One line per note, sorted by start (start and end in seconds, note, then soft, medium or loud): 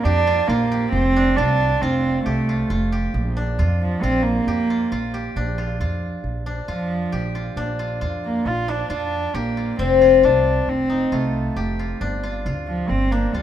0.00 1.16 D4 medium
0.00 0.49 D4 medium
0.00 0.27 F4 medium
0.05 0.41 F2 medium
0.05 0.71 G4 medium
0.27 0.49 F4 medium
0.47 0.84 A#1 medium
0.47 0.92 A#3 medium
0.47 1.38 F4 medium
0.72 2.25 G4 medium
0.92 1.39 F1 medium
0.92 1.38 C4 medium
1.16 3.36 D4 medium
1.36 1.73 C2 medium
1.36 1.83 D4 medium
1.36 1.82 F4 medium
1.81 2.18 F1 medium
1.81 2.24 C4 medium
1.81 2.49 F4 medium
2.24 2.62 C2 medium
2.24 2.88 A3 medium
2.24 2.92 G4 medium
2.49 2.70 F4 medium
2.70 3.06 F1 medium
2.70 3.59 F4 medium
2.92 4.47 G4 medium
3.14 3.60 A#1 medium
3.37 5.36 D4 medium
3.59 3.94 F2 medium
3.59 4.03 F4 medium
3.81 4.03 F3 medium
4.02 4.39 A#1 medium
4.02 4.24 C4 medium
4.02 4.70 F4 medium
4.23 5.13 A#3 medium
4.47 4.83 F2 medium
4.47 5.13 G4 medium
4.70 4.91 F4 medium
4.91 5.27 A#1 medium
4.91 5.58 F4 medium
5.14 7.12 G4 medium
5.36 5.82 A#1 medium
5.36 6.46 D4 medium
5.58 5.80 F4 medium
5.80 6.16 F2 medium
5.80 6.68 F4 medium
6.24 6.60 A#1 medium
6.46 7.57 D4 medium
6.68 7.04 F2 medium
6.68 7.31 F3 medium
6.68 7.35 F4 medium
7.12 7.49 A#1 medium
7.12 9.34 G4 medium
7.35 7.79 F4 soft
7.56 8.03 A#1 medium
7.56 8.68 D4 medium
7.79 8.01 F4 medium
8.01 8.37 F2 medium
8.01 8.89 F4 medium
8.25 8.49 A#3 medium
8.46 8.81 A#1 medium
8.46 8.71 F4 medium
8.68 10.96 D4 medium
8.68 8.91 D4 medium
8.90 9.26 F2 medium
8.90 9.38 D4 medium
8.90 9.57 F4 medium
9.34 9.70 A#1 medium
9.34 9.79 A#3 medium
9.34 11.56 G4 medium
9.57 10.01 F4 soft
9.79 10.24 F1 medium
9.79 12.79 C4 medium
9.79 10.26 C4 medium
10.01 10.23 F4 medium
10.23 10.59 C2 medium
10.23 10.70 D4 medium
10.23 11.12 F4 medium
10.67 11.03 F1 medium
10.67 11.14 C4 medium
10.90 12.07 D#4 soft
11.12 11.48 C2 medium
11.12 11.79 A3 medium
11.12 11.79 F4 medium
11.56 11.92 F1 medium
11.56 13.42 G4 medium
11.79 12.23 F4 soft
12.01 12.47 G1 medium
12.01 13.12 D4 medium
12.23 12.45 F4 medium
12.46 12.81 D2 medium
12.46 13.34 F4 medium
12.68 12.90 F3 medium
12.89 13.25 G1 medium
12.89 13.13 C4 medium
13.12 13.36 A#3 medium
13.12 13.42 D4 medium
13.33 13.42 D2 medium
13.33 13.42 G3 medium
13.33 13.42 F4 medium